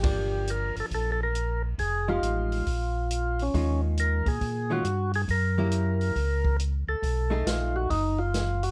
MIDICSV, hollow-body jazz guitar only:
0, 0, Header, 1, 2, 480
1, 0, Start_track
1, 0, Tempo, 436999
1, 40, Time_signature, 4, 2, 24, 8
1, 9568, End_track
2, 0, Start_track
2, 0, Title_t, "Hollow-body jazz guitar"
2, 0, Program_c, 0, 26
2, 35, Note_on_c, 0, 53, 45
2, 41, Note_on_c, 0, 58, 46
2, 46, Note_on_c, 0, 62, 50
2, 1381, Note_off_c, 0, 53, 0
2, 1384, Note_off_c, 0, 58, 0
2, 1386, Note_off_c, 0, 62, 0
2, 2286, Note_on_c, 0, 53, 49
2, 2288, Note_on_c, 0, 56, 48
2, 2289, Note_on_c, 0, 63, 53
2, 2299, Note_on_c, 0, 67, 55
2, 2893, Note_off_c, 0, 53, 0
2, 2895, Note_off_c, 0, 56, 0
2, 2895, Note_off_c, 0, 63, 0
2, 2900, Note_off_c, 0, 67, 0
2, 3893, Note_on_c, 0, 51, 40
2, 3893, Note_on_c, 0, 56, 38
2, 3899, Note_on_c, 0, 61, 41
2, 3901, Note_on_c, 0, 65, 42
2, 4622, Note_off_c, 0, 51, 0
2, 4622, Note_off_c, 0, 56, 0
2, 4624, Note_off_c, 0, 61, 0
2, 4625, Note_off_c, 0, 65, 0
2, 5164, Note_on_c, 0, 51, 51
2, 5169, Note_on_c, 0, 56, 47
2, 5172, Note_on_c, 0, 61, 57
2, 5179, Note_on_c, 0, 65, 58
2, 5309, Note_off_c, 0, 51, 0
2, 5312, Note_off_c, 0, 56, 0
2, 5313, Note_off_c, 0, 61, 0
2, 5317, Note_off_c, 0, 65, 0
2, 6129, Note_on_c, 0, 54, 48
2, 6130, Note_on_c, 0, 58, 55
2, 6137, Note_on_c, 0, 64, 53
2, 6138, Note_on_c, 0, 67, 62
2, 6735, Note_off_c, 0, 54, 0
2, 6736, Note_off_c, 0, 58, 0
2, 6739, Note_off_c, 0, 64, 0
2, 6739, Note_off_c, 0, 67, 0
2, 8021, Note_on_c, 0, 57, 60
2, 8032, Note_on_c, 0, 63, 57
2, 8032, Note_on_c, 0, 68, 68
2, 8640, Note_off_c, 0, 57, 0
2, 8645, Note_off_c, 0, 63, 0
2, 8646, Note_off_c, 0, 68, 0
2, 9568, End_track
0, 0, End_of_file